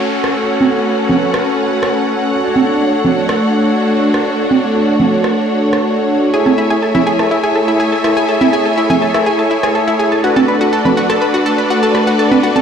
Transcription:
0.00 10.20 A3 medium
0.00 2.40 C#4 medium
0.00 2.41 C#4 medium
0.00 2.40 F#4 medium
0.00 2.41 F#4 medium
0.00 2.41 A4 medium
0.00 0.46 C#5 medium
0.00 2.41 C#5 medium
0.00 6.30 F#5 medium
0.00 downlifter medium
0.24 cross-stick medium
0.48 2.41 B4 medium
0.61 high conga medium
1.09 high conga medium
1.09 low conga medium
1.34 cross-stick medium
1.83 cross-stick medium
2.07 closed hi-hat soft
2.43 6.31 D4 medium
2.43 6.30 D4 medium
2.43 6.31 F#4 medium
2.43 6.30 F#4 medium
2.43 6.31 A4 medium
2.43 6.31 C#5 medium
2.43 10.20 C#5 medium
2.56 high conga medium
2.68 closed hi-hat medium
3.05 high conga medium
3.05 low conga medium
3.17 closed hi-hat medium
3.29 cross-stick medium
4.14 cross-stick medium
4.39 closed hi-hat medium
4.51 high conga medium
5.00 high conga medium
5.00 low conga medium
5.12 closed hi-hat medium
5.24 cross-stick medium
5.61 closed hi-hat medium
5.73 cross-stick medium
5.97 closed hi-hat soft
6.09 closed hi-hat medium
6.33 10.20 E4 medium
6.33 10.21 E4 medium
6.33 10.21 G#4 medium
6.33 6.42 G#4 medium
6.33 10.21 A4 medium
6.33 10.21 C#5 medium
6.33 10.20 E5 medium
6.33 10.20 G#5 medium
6.46 6.51 A4 medium
6.46 high conga medium
6.58 6.70 E4 loud
6.70 6.79 G#4 medium
6.82 6.88 A4 medium
6.95 7.06 E4 loud
6.95 high conga medium
6.95 low conga medium
7.07 7.15 G#4 loud
7.19 7.24 A4 medium
7.19 cross-stick medium
7.31 7.43 E4 medium
7.43 7.52 G#4 loud
7.55 7.61 A4 medium
7.55 closed hi-hat medium
7.68 7.79 E4 loud
7.80 7.89 G#4 medium
7.92 7.97 A4 medium
8.04 8.16 E4 loud
8.04 cross-stick medium
8.17 8.25 G#4 loud
8.29 8.34 A4 medium
8.41 8.53 E4 loud
8.41 high conga medium
8.53 8.62 G#4 loud
8.66 8.71 A4 medium
8.78 8.89 E4 loud
8.90 8.98 G#4 loud
8.90 high conga medium
8.90 low conga medium
9.02 9.07 A4 medium
9.14 9.26 E4 medium
9.14 cross-stick medium
9.26 9.35 G#4 loud
9.39 9.44 A4 medium
9.51 9.63 E4 loud
9.51 closed hi-hat medium
9.63 9.71 G#4 loud
9.63 cross-stick medium
9.75 9.80 A4 medium
9.88 9.99 E4 loud
9.99 10.08 G#4 medium
9.99 closed hi-hat medium
10.12 10.17 A4 medium
10.24 12.62 A3 medium
10.24 12.62 D4 medium
10.24 12.62 F#4 medium
10.24 10.36 F#4 loud
10.24 12.62 A4 medium
10.24 12.62 B4 medium
10.24 12.62 D5 medium
10.36 10.45 A4 medium
10.36 high conga medium
10.48 10.53 B4 medium
10.48 closed hi-hat medium
10.61 10.72 F#4 loud
10.73 10.81 A4 medium
10.85 10.90 B4 medium
10.85 high conga medium
10.85 low conga medium
10.97 11.09 F#4 loud
10.97 closed hi-hat medium
11.10 11.18 A4 loud
11.10 cross-stick medium
11.21 11.27 B4 medium
11.34 11.45 F#4 medium
11.46 11.54 A4 loud
11.46 closed hi-hat medium
11.58 11.63 B4 medium
11.70 11.82 F#4 loud
11.70 closed hi-hat medium
11.83 11.91 A4 loud
11.95 12.00 B4 medium
11.95 cross-stick medium
11.95 closed hi-hat medium
12.07 12.18 F#4 loud
12.19 12.28 A4 medium
12.32 12.36 B4 medium
12.32 high conga medium
12.43 12.55 F#4 loud
12.43 closed hi-hat medium
12.56 12.62 A4 loud
12.56 high conga medium

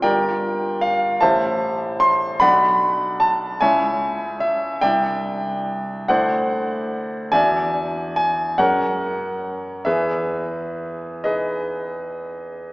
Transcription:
0.02 1.18 G1 medium
0.02 1.17 F4 soft
0.02 1.18 G4 soft
0.02 0.79 A#4 medium
0.02 0.79 D5 medium
0.02 0.82 G5 medium
0.81 1.20 F5 medium
1.21 2.36 A1 medium
1.21 2.36 E4 soft
1.21 2.36 G4 soft
1.21 1.96 C5 medium
1.21 1.96 E5 medium
1.21 1.99 A5 medium
2.00 2.40 C6 medium
2.40 3.57 B1 medium
2.40 3.57 D4 soft
2.40 3.56 F#4 soft
2.40 3.17 D5 medium
2.40 3.17 F#5 medium
2.40 3.20 B5 loud
3.20 3.60 A5 medium
3.61 4.79 C#2 soft
3.61 4.78 C#4 soft
3.61 4.78 E4 soft
3.61 4.37 C#5 medium
3.61 4.37 E5 medium
3.61 4.40 G#5 medium
4.40 4.81 E5 medium
4.81 6.06 C2 medium
4.81 6.06 D4 soft
4.81 6.05 E4 soft
4.81 6.05 D5 medium
4.81 6.05 E5 medium
4.81 6.09 G5 loud
6.08 7.29 D2 medium
6.08 7.29 D4 soft
6.08 7.28 E4 soft
6.08 7.29 C5 medium
6.08 7.28 D5 medium
6.08 7.32 F#5 medium
7.32 8.55 E2 medium
7.32 8.54 D4 soft
7.32 8.54 F#4 soft
7.32 8.12 D5 medium
7.32 8.12 E5 medium
7.32 8.15 G#5 medium
8.16 8.58 G#5 medium
8.58 9.82 F#2 soft
8.58 9.81 C#4 soft
8.58 9.81 G#4 soft
8.58 9.82 A#4 medium
8.58 9.81 C#5 medium
8.58 9.85 F#5 medium
9.85 12.73 E2 soft
9.85 11.21 G#4 medium
9.85 11.21 B4 medium
9.85 11.24 E5 medium
11.24 12.73 D#4 soft
11.24 12.73 G#4 medium
11.24 12.73 B4 medium
11.24 12.73 D#5 medium

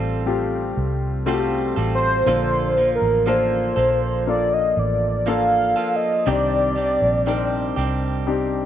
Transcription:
0.00 0.73 A1 medium
0.00 1.25 G3 soft
0.00 0.22 A3 soft
0.00 0.22 C4 soft
0.00 1.26 C4 soft
0.00 0.22 F4 soft
0.00 1.28 F4 soft
0.00 0.22 A4 medium
0.00 0.23 A4 loud
0.00 1.28 A4 soft
0.26 1.21 A3 medium
0.26 1.22 C4 soft
0.26 1.22 F4 medium
0.26 1.22 G4 medium
0.77 1.73 C2 medium
1.26 1.77 G3 soft
1.26 2.21 A3 medium
1.26 2.22 C4 medium
1.26 1.77 C4 soft
1.26 2.22 F4 medium
1.26 1.76 F4 soft
1.26 1.33 F#4 medium
1.26 1.75 A4 medium
1.33 2.25 G4 medium
1.76 2.23 A1 medium
1.76 2.27 G3 soft
1.76 2.27 C4 soft
1.76 2.27 F4 soft
1.76 2.27 A4 soft
1.95 2.90 C5 medium
2.26 2.98 A#1 medium
2.26 2.77 A#2 soft
2.26 3.73 D3 soft
2.26 2.77 D3 medium
2.26 2.77 F3 medium
2.26 3.22 A#3 soft
2.26 2.77 A#3 medium
2.26 3.22 D4 soft
2.26 3.22 F4 soft
2.26 2.76 F4 medium
2.26 3.22 A4 medium
2.26 2.78 A4 medium
2.77 3.25 F3 soft
2.77 3.26 A#3 soft
2.77 3.27 F4 soft
2.95 3.26 A#4 medium
3.02 3.73 A1 medium
3.26 3.76 F3 soft
3.26 4.22 A#3 medium
3.26 3.77 A#3 soft
3.26 4.22 D4 soft
3.26 4.22 F4 soft
3.26 3.76 F4 soft
3.26 3.75 A4 medium
3.26 4.22 A#4 medium
3.26 4.24 C5 medium
3.76 4.73 A#1 medium
3.76 5.25 F3 soft
3.76 5.26 A#3 soft
3.76 5.26 F4 soft
3.76 5.27 A4 soft
4.27 5.22 A#3 soft
4.27 5.22 D4 soft
4.27 5.22 F4 soft
4.27 5.23 A4 medium
4.27 4.55 D5 medium
4.54 4.81 D#5 medium
4.77 5.73 A1 medium
4.77 5.30 D5 medium
5.26 5.77 F3 soft
5.26 5.77 A#3 soft
5.26 6.22 A#3 medium
5.26 6.22 D4 soft
5.26 5.76 F4 soft
5.26 6.22 F4 soft
5.26 6.23 A4 medium
5.26 5.75 A4 soft
5.26 5.97 F5 medium
5.76 6.27 F3 soft
5.76 6.27 A#3 soft
5.76 6.27 F4 soft
5.76 6.26 A4 soft
5.96 6.28 D#5 medium
6.26 6.98 C2 medium
6.26 6.77 C3 soft
6.26 7.73 C3 soft
6.26 6.77 D#3 medium
6.26 6.77 G3 medium
6.26 7.22 C4 medium
6.26 6.76 C4 medium
6.26 7.22 D4 soft
6.26 6.75 D4 medium
6.26 7.22 D#4 soft
6.26 7.22 G4 soft
6.26 6.75 G4 medium
6.26 8.24 D5 loud
6.76 7.25 G3 soft
6.76 7.26 C4 soft
6.76 7.26 D4 soft
6.76 7.26 G4 soft
7.02 7.73 A#1 medium
7.26 7.76 G3 soft
7.26 8.22 C4 soft
7.26 7.77 C4 soft
7.26 8.22 D4 soft
7.26 7.76 D4 soft
7.26 8.22 D#4 soft
7.26 7.75 G4 soft
7.26 8.22 A#4 medium
7.76 8.65 C2 medium
7.76 8.65 G3 soft
7.76 8.65 C4 soft
7.76 8.65 D4 soft
7.76 8.65 G4 soft
8.27 8.65 C4 medium
8.27 8.65 D4 soft
8.27 8.65 D#4 soft
8.27 8.65 G4 medium

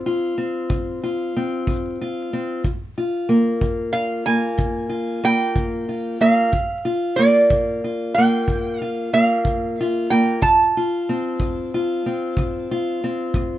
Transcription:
0.00 0.32 D2 medium
0.00 0.37 C4 medium
0.06 1.03 F4 medium
0.38 1.35 C4 medium
0.69 1.28 D2 medium
0.69 kick medium
1.03 2.01 F4 medium
1.36 2.32 C4 medium
1.67 2.26 D2 medium
1.67 kick medium
2.01 2.67 F4 medium
2.33 2.61 C4 medium
2.64 3.23 G2 medium
2.64 kick medium
2.98 3.93 F4 medium
3.29 4.27 A#3 medium
3.61 4.20 G2 medium
3.61 kick medium
3.93 4.89 F4 medium
3.93 4.27 F5 medium
4.26 5.22 A#3 medium
4.26 5.24 G#5 medium
4.57 5.17 G2 medium
4.57 kick medium
4.89 5.88 F4 medium
5.24 6.19 A#3 medium
5.24 6.21 G5 medium
5.56 6.14 G2 medium
5.56 kick medium
5.89 6.55 F4 medium
6.21 6.49 A#3 medium
6.21 7.21 F5 medium
6.52 7.11 G2 medium
6.52 kick medium
6.85 7.84 F4 medium
7.16 8.16 A#3 medium
7.16 8.17 D5 medium
7.50 8.09 G2 medium
7.50 kick medium
7.84 8.81 F4 medium
8.14 9.12 A#3 medium
8.14 8.80 G5 medium
8.48 9.06 G2 medium
8.48 kick medium
8.80 9.80 F4 medium
8.80 9.08 F5 medium
9.13 10.10 A#3 medium
9.13 9.81 F5 medium
9.45 10.04 G2 medium
9.45 kick medium
9.81 10.77 F4 medium
9.81 10.10 E5 medium
10.10 10.39 A#3 medium
10.10 10.44 G5 medium
10.41 11.00 D2 medium
10.41 12.98 A5 medium
10.41 kick medium
10.77 11.74 F4 medium
11.09 12.06 C4 medium
11.40 11.99 D2 medium
11.40 kick medium
11.74 12.71 F4 medium
12.06 13.03 C4 medium
12.37 12.96 D2 medium
12.37 kick medium
12.71 13.59 F4 medium
13.04 13.59 C4 medium
13.34 13.59 D2 medium
13.34 kick medium

